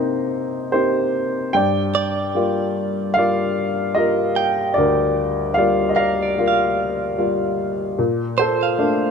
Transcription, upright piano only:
0, 0, Header, 1, 2, 480
1, 0, Start_track
1, 0, Key_signature, -2, "minor"
1, 0, Tempo, 805369
1, 920, Time_signature, 4, 2, 24, 8
1, 5428, End_track
2, 0, Start_track
2, 0, Title_t, "Upright piano"
2, 0, Program_c, 0, 0
2, 0, Control_c, 0, 64, 127
2, 0, Note_on_c, 0, 48, 59
2, 0, Note_on_c, 0, 58, 48
2, 0, Note_on_c, 0, 60, 47
2, 0, Note_on_c, 0, 63, 51
2, 0, Note_on_c, 0, 72, 64
2, 0, Note_on_c, 0, 75, 78
2, 171, Note_off_c, 0, 75, 0
2, 176, Note_off_c, 0, 72, 0
2, 421, Note_off_c, 0, 58, 0
2, 424, Note_off_c, 0, 60, 0
2, 425, Note_off_c, 0, 63, 0
2, 430, Note_on_c, 0, 72, 72
2, 439, Note_on_c, 0, 58, 41
2, 439, Note_on_c, 0, 60, 37
2, 443, Note_on_c, 0, 63, 44
2, 446, Note_on_c, 0, 67, 58
2, 896, Note_off_c, 0, 48, 0
2, 901, Note_off_c, 0, 67, 0
2, 907, Note_off_c, 0, 58, 0
2, 907, Note_off_c, 0, 60, 0
2, 909, Note_off_c, 0, 63, 0
2, 913, Note_on_c, 0, 79, 94
2, 919, Note_on_c, 0, 43, 62
2, 928, Control_c, 0, 64, 0
2, 932, Note_off_c, 0, 72, 0
2, 933, Note_on_c, 0, 74, 61
2, 1018, Control_c, 0, 64, 127
2, 1401, Note_on_c, 0, 55, 46
2, 1403, Note_on_c, 0, 58, 43
2, 1408, Note_on_c, 0, 65, 56
2, 1856, Note_off_c, 0, 79, 0
2, 1866, Note_off_c, 0, 74, 0
2, 1868, Note_off_c, 0, 55, 0
2, 1870, Note_off_c, 0, 58, 0
2, 1870, Note_on_c, 0, 77, 97
2, 1872, Note_off_c, 0, 65, 0
2, 1887, Note_on_c, 0, 55, 47
2, 1891, Note_on_c, 0, 58, 44
2, 1892, Note_on_c, 0, 65, 54
2, 1899, Note_on_c, 0, 74, 75
2, 2349, Note_off_c, 0, 74, 0
2, 2352, Note_off_c, 0, 55, 0
2, 2352, Note_on_c, 0, 75, 80
2, 2354, Note_off_c, 0, 58, 0
2, 2355, Note_off_c, 0, 65, 0
2, 2361, Note_on_c, 0, 55, 46
2, 2363, Note_on_c, 0, 58, 40
2, 2367, Note_on_c, 0, 65, 51
2, 2371, Note_on_c, 0, 70, 65
2, 2373, Note_off_c, 0, 77, 0
2, 2821, Note_off_c, 0, 43, 0
2, 2825, Note_off_c, 0, 70, 0
2, 2825, Note_on_c, 0, 74, 84
2, 2829, Note_off_c, 0, 55, 0
2, 2830, Note_off_c, 0, 58, 0
2, 2832, Note_off_c, 0, 65, 0
2, 2846, Note_on_c, 0, 38, 59
2, 2849, Note_on_c, 0, 70, 58
2, 2853, Note_off_c, 0, 75, 0
2, 3302, Note_off_c, 0, 70, 0
2, 3303, Note_on_c, 0, 77, 87
2, 3320, Note_off_c, 0, 74, 0
2, 3322, Note_on_c, 0, 55, 54
2, 3324, Note_on_c, 0, 58, 48
2, 3327, Note_on_c, 0, 65, 54
2, 3329, Note_on_c, 0, 74, 65
2, 3510, Note_off_c, 0, 74, 0
2, 3512, Note_on_c, 0, 75, 62
2, 3517, Note_off_c, 0, 77, 0
2, 3551, Note_on_c, 0, 77, 91
2, 3557, Note_off_c, 0, 75, 0
2, 3573, Note_on_c, 0, 74, 62
2, 3787, Note_off_c, 0, 55, 0
2, 3788, Note_off_c, 0, 58, 0
2, 3789, Note_off_c, 0, 65, 0
2, 3803, Note_on_c, 0, 55, 47
2, 3807, Note_on_c, 0, 58, 43
2, 3808, Note_on_c, 0, 65, 53
2, 4266, Note_off_c, 0, 55, 0
2, 4268, Note_off_c, 0, 58, 0
2, 4268, Note_off_c, 0, 65, 0
2, 4282, Note_on_c, 0, 55, 50
2, 4283, Note_on_c, 0, 58, 42
2, 4284, Note_on_c, 0, 65, 47
2, 4488, Note_off_c, 0, 77, 0
2, 4498, Note_off_c, 0, 74, 0
2, 4731, Note_off_c, 0, 38, 0
2, 4742, Note_off_c, 0, 55, 0
2, 4743, Note_off_c, 0, 58, 0
2, 4743, Note_off_c, 0, 65, 0
2, 4759, Note_on_c, 0, 46, 62
2, 4764, Control_c, 0, 64, 0
2, 4880, Control_c, 0, 64, 127
2, 5003, Note_on_c, 0, 72, 82
2, 5008, Note_on_c, 0, 69, 62
2, 5234, Note_on_c, 0, 57, 54
2, 5236, Note_on_c, 0, 58, 48
2, 5237, Note_on_c, 0, 62, 60
2, 5428, Note_off_c, 0, 46, 0
2, 5428, Note_off_c, 0, 57, 0
2, 5428, Note_off_c, 0, 58, 0
2, 5428, Note_off_c, 0, 62, 0
2, 5428, Note_off_c, 0, 69, 0
2, 5428, Note_off_c, 0, 72, 0
2, 5428, End_track
0, 0, End_of_file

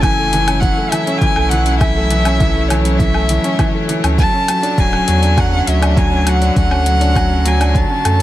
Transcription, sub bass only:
0, 0, Header, 1, 2, 480
1, 0, Start_track
1, 0, Key_signature, 3, "minor"
1, 0, Tempo, 594059
1, 1464, Time_signature, 4, 2, 24, 8
1, 6644, End_track
2, 0, Start_track
2, 0, Title_t, "Sub bass"
2, 0, Program_c, 0, 38
2, 0, Note_on_c, 0, 30, 87
2, 576, Note_off_c, 0, 30, 0
2, 1102, Note_on_c, 0, 35, 94
2, 2737, Note_off_c, 0, 35, 0
2, 3260, Note_on_c, 0, 38, 82
2, 3444, Note_off_c, 0, 38, 0
2, 3858, Note_on_c, 0, 26, 88
2, 4044, Note_off_c, 0, 26, 0
2, 4104, Note_on_c, 0, 40, 95
2, 4538, Note_off_c, 0, 40, 0
2, 4583, Note_on_c, 0, 38, 89
2, 5257, Note_off_c, 0, 38, 0
2, 5300, Note_on_c, 0, 38, 95
2, 6336, Note_off_c, 0, 38, 0
2, 6503, Note_on_c, 0, 42, 90
2, 6644, Note_off_c, 0, 42, 0
2, 6644, End_track
0, 0, End_of_file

